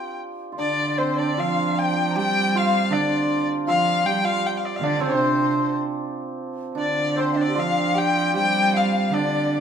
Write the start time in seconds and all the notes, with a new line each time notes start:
Already playing: D4 F4 G4 G5
0.52 F4
0.57 D3 D4 D5
0.98 C4 C5
1.16 D4 D5
1.23 C5
1.28 D5
1.37 F3 F4 F5
1.77 G5
2.10 A#5
2.15 G3 G4 G5
2.55 F4 F5
2.90 D3 D4 D5
3.66 F3 F4 F5
4.04 G3 G4 G5
4.24 F4 F5
4.46 G5
4.57 F5
4.65 D5
4.76 F5
4.81 D3 D4 D5
4.95 D4
5.00 C3 C4 C5
6.75 D3 D4 D5
7.16 C4 C5
7.32 D4 F5
7.37 D5
7.41 D5
7.48 G4
7.55 F3 F4 F5
7.60 F5
7.94 G4 G5
8.34 G3 G4 G5
8.74 F5
9.11 D3 D4 D5